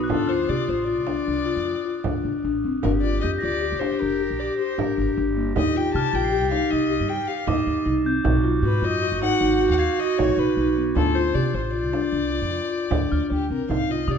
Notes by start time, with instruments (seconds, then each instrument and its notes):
Already playing: clarinet F#4, crotales D#6
0.04 crotales F#6
0.09 upright bass D2, marimba D4, clarinet F4, violin A4, frame drum
0.27 marimba F4, violin C5, crotales F6, frame drum
0.49 upright bass C3, marimba G4, violin D5
0.68 upright bass A1, marimba F4, violin C5, frame drum
0.87 marimba F4, violin D5, frame drum
0.97 upright bass C2
1.07 marimba D4, frame drum
1.26 upright bass C2, marimba D4, frame drum
1.46 marimba F4
1.56 upright bass F2
1.65 marimba F4, frame drum
1.86 marimba F4
2.04 upright bass D2, marimba D4, frame drum
2.24 upright bass C2, marimba D4
2.44 upright bass A1, marimba D4
2.64 upright bass G1, marimba C4
2.82 upright bass G1, marimba D4, clarinet G4, violin A#4, frame drum
3.02 marimba F4, violin D5, frame drum
3.21 upright bass F2, marimba G4, violin D#5, crotales G6
3.39 marimba F4, violin D5, crotales A#6
3.43 upright bass D2
3.62 marimba G4, frame drum
3.72 upright bass F1
3.80 marimba D4, violin C5, frame drum
4.00 upright bass F1, marimba D4, violin A#4
4.19 marimba G4, frame drum
4.30 upright bass A#1
4.39 marimba G4, violin D5
4.59 marimba G4, violin C5
4.78 upright bass G1, marimba D4, violin A#4, frame drum
4.97 upright bass G1, marimba D4
5.17 upright bass G1, marimba D4
5.36 marimba A#3
5.55 upright bass D#2, marimba D#4, clarinet G4, violin D#5, frame drum
5.75 marimba F4, violin G5
5.94 upright bass C3, marimba G4, violin A5, crotales F6
6.12 upright bass A#1, marimba F4, violin G5, crotales A6
6.24 crotales C7
6.31 marimba G4, frame drum
6.42 upright bass C2
6.51 marimba D#4, violin F5, frame drum
6.70 upright bass C2, marimba D#4, violin D#5
6.90 marimba G4, frame drum
7.00 upright bass G2
7.09 marimba G4, violin G5
7.28 marimba G4, violin F5
7.47 upright bass D#2, marimba D#4, violin D#5, crotales D6, frame drum
7.66 upright bass D#2, marimba D#4
7.86 upright bass C2, marimba D#4
8.05 marimba C4, crotales G6
8.24 upright bass B1, marimba D#4, clarinet F#4, frame drum
8.44 marimba F4, frame drum
8.62 upright bass G#2, marimba F#4, violin B4
8.82 upright bass F#2, marimba F4, violin D#5
9.02 marimba F#4, frame drum
9.12 upright bass G#1
9.22 marimba D#4, violin F#5, frame drum
9.41 upright bass G#1, marimba D#4
9.60 marimba F#4, frame drum
9.70 upright bass D#2, violin F#5
9.79 marimba F#4, violin F5, crotales G#6
9.99 marimba F#4, violin D#5
10.18 upright bass B1, marimba D#4, violin C#5, frame drum
10.37 upright bass B1, marimba D#4, violin B4
10.57 upright bass B1, marimba D#4
10.77 marimba B3
10.95 upright bass D2, marimba D4, clarinet F4, violin A4, frame drum
11.15 marimba F4, violin C5, crotales G6, frame drum
11.35 upright bass C3, marimba G4, violin D5
11.54 upright bass A1, marimba F4, violin C5
11.73 marimba F4, violin D5
11.84 upright bass C2
11.93 marimba D4, frame drum
12.12 upright bass C2, marimba D4
12.31 marimba F4
12.42 upright bass F2
12.52 marimba F4
12.71 marimba F4
12.90 upright bass D2, marimba D4, frame drum
13.10 upright bass D2, marimba D4, crotales F6, frame drum
13.30 upright bass D2, marimba D4, violin G4
13.50 upright bass C2, marimba C4, violin A#4, frame drum
13.69 upright bass C2, marimba D#4, violin F5, frame drum
13.90 marimba F4, violin D#5
14.08 upright bass C3, marimba G4, violin D5, crotales D#6